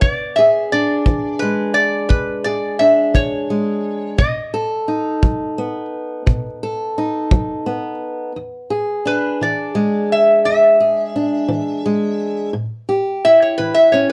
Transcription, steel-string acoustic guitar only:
Already playing: B3
0.03 E2
0.39 G#4
0.73 D4
1.07 E3
1.42 G#3
2.10 E2
2.46 G#4
2.80 D4
3.14 E3
3.50 G#3
4.19 B2
4.54 A4
4.88 D#4
5.22 F#3
5.58 B3
6.26 B2
6.63 A4
6.98 D#4
7.32 F#3
7.66 B3
8.36 E2
8.70 G#4
9.05 D4
9.41 E3
9.75 G#3
10.46 E2
10.80 G#4
11.16 D4
11.48 E3
11.86 G#3
12.53 A2
12.89 G4
13.25 E4
13.59 E3
13.94 C#4

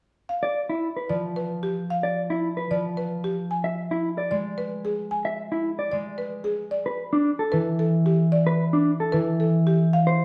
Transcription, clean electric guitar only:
0.43 D5
0.69 E4
0.97 B4
2.03 D5
2.30 E4
2.57 B4
3.64 E5
3.91 E4
4.18 D5
5.25 E5
5.52 E4
5.79 D5
6.86 B4
7.13 D4
7.39 A4
8.47 B4
8.73 D4
9.00 A4
10.07 C5

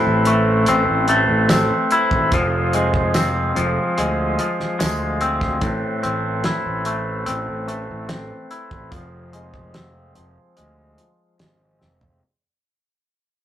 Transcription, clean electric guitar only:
Already playing: A2 C4 E4
0.27 A3
0.68 C4
1.09 A3
1.50 C4
1.92 E4
2.34 F3
2.74 G#3
3.15 C4
3.56 F3
3.98 G#3
4.39 F3
4.79 G#3
5.21 C4
5.62 A2
6.03 C4
6.46 E4
6.86 A3
7.26 C4
7.68 A3
8.09 C4
8.51 E4
8.91 F3
9.33 G#3
9.74 C4
10.16 F3
10.57 G#3
10.98 F3
11.39 G#3
11.80 C4

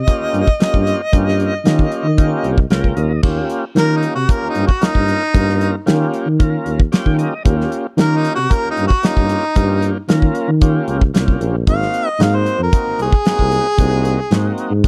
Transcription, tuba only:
0.20 D#2
0.33 G2
0.60 D#2
0.74 G2
1.13 G2
1.65 D#3
2.04 D#3
2.44 C2
2.70 C#2
2.97 D#2
3.23 D#2
3.75 D#3
4.15 C3
4.42 D#2
4.55 G2
4.81 D#2
4.95 G2
5.34 G2
5.87 D#3
6.26 D#3
6.66 D#2
7.06 D#3
7.45 D#2
7.98 D#3
8.37 C3
8.64 D#2
8.77 G2
9.04 D#2
9.17 G2
9.56 G2
10.08 D#3
10.48 D#3
10.88 C#2
11.14 C2
11.40 A#1
11.67 G#1
12.19 G#2
12.59 F2
12.86 G#1
12.99 C2
13.25 G#1
13.39 C2
13.78 C2
14.31 G#2
14.71 G#2

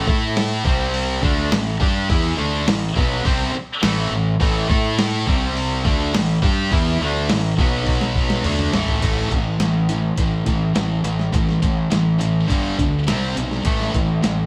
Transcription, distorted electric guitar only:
0.07 A3 E4 A4
0.65 C3 G3 C4
1.22 D3 A3 D4
1.52 A2 E3
1.80 G3 D4 G4
2.09 E3 B3 E4
2.38 D3 A3 D4
2.67 A2 E3
2.96 B2 F#3 B3
3.25 C3 G3 C4
3.54 muted distorted electric guitar stroke
3.82 A2 E3 A3
4.12 A2 E3
4.40 A2 E3 A3
4.69 A3 E4 A4
5.27 C3 G3 C4
5.85 D3 A3 D4
6.14 A2 E3
6.42 G3 D4 G4
6.72 E3 B3 E4
7.01 D3 A3 D4
7.30 A2 E3
7.59 B2 F#3 B3
8.44 D3 A3 D4
8.73 A2 E3 A3
9.02 A2 E3 A3
9.31 A2 E3
9.61 A2 E3
9.89 A2 E3
10.18 A2 E3
10.47 A2 E3
10.75 A2 E3
11.04 A2 E3
11.33 A2 E3
11.62 A2 E3
11.91 A2 E3
12.20 A2 E3
12.48 G2 D3 G3
12.78 G2 D3
13.07 C3 G3 C4
13.36 C3 G3
13.65 A2 E3 A3
13.94 A2 E3
14.23 A2 E3

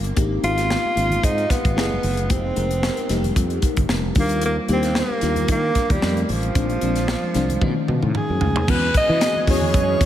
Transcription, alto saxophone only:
0.44 F4
1.24 D#4
1.51 B3
2.31 C4
4.20 A#3
4.45 A#3
4.72 C4
4.98 A#3
5.51 A#3
5.92 G3
6.24 G3
6.30 F3
8.17 G#4
8.70 B4
8.97 D#5
9.51 C#5

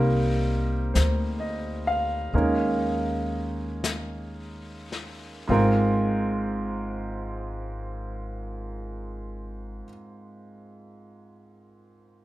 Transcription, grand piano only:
Already playing: G3 A#3 C4 D#4 A#4 C5
0.94 C5
1.40 D#5
1.87 F5
2.34 G#3 A#3 C#4 D#4 A#4
5.48 G#2 G#3 C4 F4
5.52 A#4

